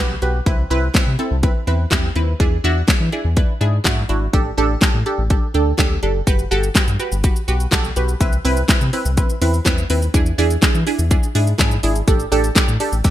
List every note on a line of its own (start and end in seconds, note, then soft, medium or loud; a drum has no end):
0.00 0.17 B1 medium
0.00 0.15 F#4 loud
0.00 0.15 G4 loud
0.00 0.15 B4 loud
0.22 0.41 B1 loud
0.22 0.39 F#4 medium
0.22 0.39 G4 medium
0.22 0.39 B4 medium
0.22 closed hi-hat medium
0.46 0.65 C2 loud
0.46 0.63 C4 loud
0.46 0.63 E4 loud
0.46 0.64 B4 loud
0.46 kick loud
0.46 closed hi-hat medium
0.70 0.89 C2 loud
0.70 0.87 C4 loud
0.70 0.88 E4 loud
0.70 0.88 B4 loud
0.70 closed hi-hat soft
0.94 1.00 C3 soft
0.94 1.12 C4 medium
0.94 1.12 E4 medium
0.94 1.12 B4 loud
0.94 kick loud
0.94 snare loud
0.94 clap loud
0.94 closed hi-hat medium
1.07 1.16 C3 medium
1.19 1.36 C4 medium
1.19 1.36 E4 medium
1.19 1.36 A4 medium
1.19 closed hi-hat soft
1.31 1.50 C2 loud
1.43 1.60 C4 medium
1.43 1.60 E4 medium
1.43 1.60 B4 loud
1.43 kick loud
1.43 closed hi-hat medium
1.67 1.86 E2 loud
1.67 1.84 C4 medium
1.67 1.84 E4 medium
1.67 1.84 B4 medium
1.67 closed hi-hat medium
1.91 2.10 E2 medium
1.91 2.08 C4 loud
1.91 2.09 E4 loud
1.91 2.09 G4 loud
1.91 kick loud
1.91 snare loud
1.91 clap loud
1.91 closed hi-hat medium
2.15 2.35 D#2 loud
2.15 2.33 C4 medium
2.15 2.33 E4 medium
2.15 2.33 B4 medium
2.15 closed hi-hat medium
2.40 2.59 E2 loud
2.40 2.57 D4 loud
2.40 2.57 E4 loud
2.40 2.57 G#4 loud
2.40 kick loud
2.40 closed hi-hat medium
2.64 2.83 E2 medium
2.64 2.81 D4 loud
2.64 2.81 E4 loud
2.64 2.81 F#4 loud
2.64 closed hi-hat soft
2.88 3.05 D4 medium
2.88 3.05 E4 medium
2.88 3.05 G#4 medium
2.88 kick loud
2.88 snare loud
2.88 clap loud
2.88 closed hi-hat medium
3.00 3.10 E3 medium
3.12 3.29 D4 medium
3.12 3.30 E4 medium
3.12 3.30 G#4 medium
3.12 closed hi-hat soft
3.25 3.43 E2 medium
3.37 3.54 D4 medium
3.37 3.54 E4 medium
3.37 3.54 B4 loud
3.37 kick loud
3.37 closed hi-hat medium
3.61 3.80 G#2 medium
3.61 3.78 D4 medium
3.61 3.78 E4 medium
3.61 3.78 G#4 loud
3.61 closed hi-hat medium
3.84 4.04 G#2 loud
3.84 4.02 D4 loud
3.84 4.02 E4 loud
3.84 4.02 F#4 loud
3.84 kick loud
3.84 snare loud
3.84 clap loud
3.84 closed hi-hat medium
4.09 4.28 G#1 medium
4.09 4.26 D4 medium
4.09 4.26 E4 medium
4.09 4.26 F#4 medium
4.09 closed hi-hat medium
4.33 4.52 A1 loud
4.33 4.50 D4 loud
4.33 4.50 G4 loud
4.33 4.51 A4 loud
4.33 kick loud
4.33 closed hi-hat medium
4.57 4.76 A1 loud
4.57 4.75 D4 loud
4.57 4.75 G4 loud
4.57 4.75 A4 loud
4.57 closed hi-hat soft
4.81 4.99 D4 medium
4.81 4.99 G4 medium
4.81 4.99 A4 loud
4.81 kick loud
4.81 snare loud
4.81 clap loud
4.81 closed hi-hat medium
4.94 5.03 A2 medium
5.06 5.23 D4 medium
5.06 5.23 G4 medium
5.06 5.23 A4 medium
5.06 closed hi-hat soft
5.18 5.37 A1 medium
5.30 5.47 D4 medium
5.30 5.47 G4 medium
5.30 5.47 A4 loud
5.30 kick loud
5.30 closed hi-hat medium
5.54 5.73 D2 medium
5.54 5.71 D4 medium
5.54 5.71 G4 medium
5.54 5.72 A4 medium
5.54 closed hi-hat medium
5.78 5.97 D2 loud
5.78 5.96 D4 loud
5.78 5.96 G4 loud
5.78 5.96 A4 loud
5.78 kick loud
5.78 snare loud
5.78 clap loud
5.78 closed hi-hat medium
6.03 6.22 F#1 loud
6.03 6.20 D4 medium
6.03 6.20 G4 medium
6.03 6.20 A4 medium
6.03 closed hi-hat medium
6.27 6.46 G1 loud
6.27 6.44 F#4 loud
6.27 6.44 G4 loud
6.27 6.44 B4 loud
6.27 kick loud
6.27 closed hi-hat medium
6.27 shaker medium
6.39 shaker soft
6.51 6.70 G1 loud
6.51 6.68 F#4 loud
6.51 6.68 G4 loud
6.51 6.68 A4 loud
6.51 closed hi-hat soft
6.51 shaker soft
6.63 shaker medium
6.75 6.80 G2 soft
6.75 6.92 F#4 medium
6.75 6.92 G4 medium
6.75 6.93 B4 loud
6.75 kick loud
6.75 snare loud
6.75 clap loud
6.75 closed hi-hat medium
6.75 shaker medium
6.88 6.97 G2 loud
6.88 shaker medium
6.99 7.17 F#4 medium
6.99 7.17 G4 medium
6.99 7.17 B4 loud
6.99 closed hi-hat soft
6.99 shaker soft
7.12 7.30 G1 medium
7.12 shaker medium
7.24 7.41 F#4 medium
7.24 7.41 G4 medium
7.24 7.41 B4 loud
7.24 kick loud
7.24 closed hi-hat medium
7.24 shaker medium
7.36 shaker medium
7.48 7.67 B1 medium
7.48 7.65 F#4 medium
7.48 7.65 G4 medium
7.48 7.65 B4 medium
7.48 closed hi-hat medium
7.48 shaker medium
7.60 shaker medium
7.71 7.91 B1 medium
7.71 7.89 F#4 loud
7.71 7.89 G4 loud
7.71 7.89 A4 loud
7.71 kick loud
7.71 snare medium
7.71 clap loud
7.71 closed hi-hat medium
7.71 shaker medium
7.84 shaker soft
7.96 8.15 B1 loud
7.96 8.13 F#4 medium
7.96 8.13 G4 medium
7.96 8.14 B4 medium
7.96 closed hi-hat medium
7.96 shaker medium
8.08 shaker medium
8.20 8.39 C2 loud
8.20 8.37 C4 loud
8.20 8.38 E4 loud
8.20 8.38 B4 loud
8.20 kick loud
8.20 closed hi-hat medium
8.20 shaker medium
8.32 shaker soft
8.45 8.64 C2 loud
8.45 8.62 C4 loud
8.45 8.62 E4 loud
8.45 8.62 B4 loud
8.45 open hi-hat medium
8.45 shaker soft
8.57 shaker medium
8.68 8.74 C3 soft
8.68 8.86 C4 medium
8.68 8.86 E4 medium
8.68 8.86 B4 loud
8.68 kick loud
8.68 snare loud
8.68 clap loud
8.68 closed hi-hat medium
8.68 shaker medium
8.81 8.90 C3 medium
8.81 shaker medium
8.93 9.10 C4 medium
8.93 9.10 E4 medium
8.93 9.10 B4 medium
8.93 open hi-hat medium
8.93 shaker soft
9.05 9.24 C2 medium
9.05 shaker medium
9.17 9.34 C4 medium
9.17 9.34 E4 medium
9.17 9.35 B4 loud
9.17 kick loud
9.17 closed hi-hat medium
9.17 shaker medium
9.30 shaker medium
9.41 9.60 E2 loud
9.41 9.58 C4 medium
9.41 9.59 E4 medium
9.41 9.59 B4 medium
9.41 open hi-hat medium
9.41 shaker medium
9.54 shaker medium
9.65 9.85 E2 medium
9.65 9.83 C4 loud
9.65 9.83 E4 loud
9.65 9.83 B4 loud
9.65 kick loud
9.65 snare loud
9.65 clap loud
9.65 closed hi-hat medium
9.65 shaker medium
9.78 shaker medium
9.90 10.09 D#2 medium
9.90 10.07 C4 medium
9.90 10.07 E4 medium
9.90 10.07 B4 loud
9.90 open hi-hat medium
9.90 shaker medium
10.02 shaker medium
10.14 10.33 E2 loud
10.14 10.31 D4 loud
10.14 10.31 E4 loud
10.14 10.31 G#4 loud
10.14 kick loud
10.14 closed hi-hat medium
10.14 shaker medium
10.26 shaker medium
10.38 10.57 E2 medium
10.38 10.55 D4 loud
10.38 10.55 E4 loud
10.38 10.55 G#4 loud
10.38 open hi-hat medium
10.38 shaker soft
10.50 shaker medium
10.62 10.67 E3 soft
10.62 10.79 D4 medium
10.62 10.80 E4 medium
10.62 10.80 G#4 loud
10.62 kick loud
10.62 snare loud
10.62 clap loud
10.62 closed hi-hat medium
10.62 shaker medium
10.75 10.84 E3 medium
10.75 shaker medium
10.87 11.04 D4 medium
10.87 11.04 E4 medium
10.87 11.04 G#4 medium
10.87 open hi-hat medium
10.87 shaker soft
10.99 11.18 E2 medium
10.99 shaker medium
11.11 11.28 D4 medium
11.11 11.28 E4 medium
11.11 11.28 G#4 loud
11.11 kick loud
11.11 closed hi-hat medium
11.11 shaker medium
11.23 shaker medium
11.35 11.54 G#2 medium
11.35 11.52 D4 medium
11.35 11.52 E4 medium
11.35 11.52 G#4 loud
11.35 open hi-hat medium
11.35 shaker medium
11.47 shaker medium
11.58 11.78 G#2 loud
11.58 11.76 D4 loud
11.58 11.76 E4 loud
11.58 11.76 G#4 loud
11.58 kick loud
11.58 snare loud
11.58 clap loud
11.58 closed hi-hat medium
11.58 shaker medium
11.71 shaker medium
11.83 12.02 G#1 medium
11.83 12.00 D4 medium
11.83 12.01 E4 medium
11.83 12.01 G#4 medium
11.83 open hi-hat medium
11.83 shaker medium
11.95 shaker medium
12.07 12.26 A1 loud
12.07 12.25 D4 loud
12.07 12.25 G4 loud
12.07 12.25 A4 loud
12.07 kick loud
12.07 closed hi-hat medium
12.07 shaker medium
12.20 shaker soft
12.32 12.51 A1 loud
12.32 12.49 D4 loud
12.32 12.49 G4 loud
12.32 12.49 A4 loud
12.32 open hi-hat medium
12.32 shaker soft
12.44 shaker medium
12.55 12.61 A2 soft
12.55 12.73 D4 medium
12.55 12.73 G4 medium
12.55 12.73 A4 loud
12.55 kick loud
12.55 snare loud
12.55 clap loud
12.55 closed hi-hat medium
12.55 shaker medium
12.68 12.77 A2 loud
12.68 shaker medium
12.80 12.97 D4 medium
12.80 12.97 G4 medium
12.80 12.97 A4 medium
12.80 open hi-hat medium
12.80 shaker soft
12.92 13.02 A1 medium
12.92 shaker medium
13.04 13.10 D4 medium
13.04 13.10 G4 medium
13.04 13.10 A4 loud
13.04 kick loud
13.04 snare medium
13.04 closed hi-hat medium
13.04 shaker medium